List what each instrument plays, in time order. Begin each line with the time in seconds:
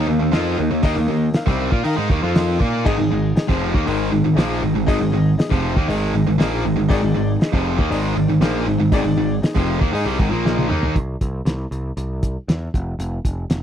Already playing: grand piano D#4 A#4 F5
0.07 picked electric bass D#2, distorted electric guitar D#3 A#3
0.21 picked electric bass D#2, distorted electric guitar D#3 A#3
0.32 picked electric bass F2, distorted electric guitar F3 C4 F4, grand piano D#4 A#4 D#5, snare, open hi-hat
0.59 picked electric bass D#2, distorted electric guitar D#3 A#3
0.71 picked electric bass D#2, distorted electric guitar D#3 A#3
0.83 picked electric bass D#2, distorted electric guitar D#3 A#3, grand piano D#4 A#4 D#5, kick, open hi-hat
0.96 picked electric bass D#2, distorted electric guitar D#3 A#3
1.09 picked electric bass D#2, distorted electric guitar D#3 A#3
1.34 grand piano D#4 A#4 F5, snare, open hi-hat
1.46 picked electric bass C2, distorted electric guitar C3 G3 C4, kick
1.71 picked electric bass A#2, distorted electric guitar A#3 F4, kick
1.85 picked electric bass D#3, distorted electric guitar D#4 A#4, grand piano D#4 A#4 F5, open hi-hat
1.97 picked electric bass G#2, distorted electric guitar G#3 D#4
2.10 picked electric bass D#2, distorted electric guitar D#3 A#3, kick
2.23 picked electric bass F2, distorted electric guitar F3 C4 F4
2.34 grand piano D#4 A#4 D#5, snare, open hi-hat
2.59 picked electric bass A#2, distorted electric guitar A#3 F4 A#4, kick
2.84 picked electric bass G#1, distorted electric guitar G#2 D#3, grand piano D#4 G#4 D#5, kick, crash
2.98 picked electric bass G#1, distorted electric guitar G#2 D#3
3.11 picked electric bass G#1, distorted electric guitar G#2 D#3
3.35 grand piano D#4 G#4 D#5, snare, open hi-hat
3.47 picked electric bass F1, distorted electric guitar F2 C3 F3, kick
3.63 snare
3.74 picked electric bass D#2, distorted electric guitar D#3 A#3, kick
3.86 picked electric bass G#1, distorted electric guitar G#2 D#3 G#3, grand piano D#4 G#4 A#4, open hi-hat
4.12 picked electric bass G#1, distorted electric guitar G#2 D#3
4.25 picked electric bass G#1, distorted electric guitar G#2 D#3
4.35 picked electric bass A#1, distorted electric guitar A#2 F3 A#3, grand piano D#4 G#4 D#5, open hi-hat
4.39 snare
4.62 picked electric bass G#1, distorted electric guitar G#2 D#3
4.74 picked electric bass G#1, distorted electric guitar G#2 D#3
4.86 picked electric bass G#1, distorted electric guitar G#2 D#3, grand piano D#4 G#4 D#5, kick, open hi-hat
5.00 picked electric bass G#1, distorted electric guitar G#2 D#3
5.12 picked electric bass G#1, distorted electric guitar G#2 D#3
5.38 grand piano D#4 G#4 D#5, snare, open hi-hat
5.50 picked electric bass F1, distorted electric guitar F2 C3 F3, kick
5.76 picked electric bass D#2, distorted electric guitar D#3 A#3, kick
5.88 picked electric bass G#1, distorted electric guitar G#2 D#3 G#3, grand piano D#4 G#4 D#5, open hi-hat
6.14 picked electric bass G#1, distorted electric guitar G#2 D#3
6.27 picked electric bass G#1, distorted electric guitar G#2 D#3
6.39 picked electric bass A#1, distorted electric guitar A#2 F3 A#3, grand piano D#4 G#4 D#5, snare, open hi-hat
6.65 picked electric bass G#1, distorted electric guitar G#2 D#3
6.77 picked electric bass G#1, distorted electric guitar G#2 D#3
6.88 picked electric bass G#1, distorted electric guitar G#2 D#3, grand piano D#4 G#4 D5, kick, open hi-hat
7.03 picked electric bass G#1, distorted electric guitar G#2 D#3
7.16 picked electric bass G#1, distorted electric guitar G#2 D#3
7.39 grand piano D#4 G#4 D#5, snare, open hi-hat
7.53 picked electric bass F1, distorted electric guitar F2 C3 F3, kick
7.79 picked electric bass D#2, distorted electric guitar D#3 A#3, kick
7.90 picked electric bass G#1, distorted electric guitar G#2 D#3 G#3, grand piano D#4 G#4 D5, open hi-hat
8.16 picked electric bass G#1, distorted electric guitar G#2 D#3
8.28 picked electric bass G#1, distorted electric guitar G#2 D#3
8.41 picked electric bass A#1, distorted electric guitar A#2 F3 A#3, grand piano D#4 G#4 C5, snare, open hi-hat
8.67 picked electric bass G#1, distorted electric guitar G#2 D#3
8.78 picked electric bass G#1, distorted electric guitar G#2 D#3
8.92 picked electric bass G#1, distorted electric guitar G#2 D#3, grand piano D#4 G#4 D5, kick, open hi-hat
9.04 picked electric bass G#1, distorted electric guitar G#2 D#3
9.16 picked electric bass G#1, distorted electric guitar G#2 D#3
9.42 grand piano D#4 G#4 D#5, snare, open hi-hat
9.56 picked electric bass F1, distorted electric guitar F2 C3 F3, kick
9.80 picked electric bass D#2, distorted electric guitar D#3 A#3, kick
9.93 picked electric bass G#2, distorted electric guitar G#3 D#4, grand piano D#4 G#4 D#5, open hi-hat
10.05 picked electric bass C2, distorted electric guitar C3 G3
10.19 picked electric bass G#1, distorted electric guitar G#2 D#3, kick
10.30 picked electric bass A#1, distorted electric guitar A#2 F3 A#3
10.44 grand piano D#4 G#4 D#5, snare
10.58 high tom
10.69 picked electric bass D#2, distorted electric guitar D#3 A#3 D#4, mid tom
10.83 floor tom
10.96 picked electric bass C2, kick, closed hi-hat
11.21 picked electric bass C2, kick, closed hi-hat
11.45 picked electric bass C2, snare, closed hi-hat
11.71 picked electric bass C2, closed hi-hat
11.97 picked electric bass C2, closed hi-hat
12.23 kick, closed hi-hat
12.48 picked electric bass E2, snare, closed hi-hat
12.74 picked electric bass F1, kick, closed hi-hat
12.99 picked electric bass F1, closed hi-hat
13.25 picked electric bass F1, kick, closed hi-hat
13.50 picked electric bass F1, snare, closed hi-hat